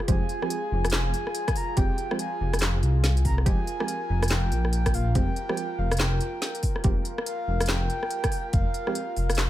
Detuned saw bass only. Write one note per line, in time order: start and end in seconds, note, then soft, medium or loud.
0.08 0.20 F1 loud
0.72 1.13 F1 medium
1.77 1.89 F1 loud
2.41 2.82 F1 medium
2.83 3.45 C2 loud
3.46 3.58 F1 loud
4.10 4.51 F1 medium
4.52 5.14 A#1 loud
5.15 5.27 F1 loud
5.78 6.20 F1 medium
6.84 6.96 F1 loud
7.48 7.89 F1 medium
8.53 8.65 F1 loud
9.17 9.50 F1 medium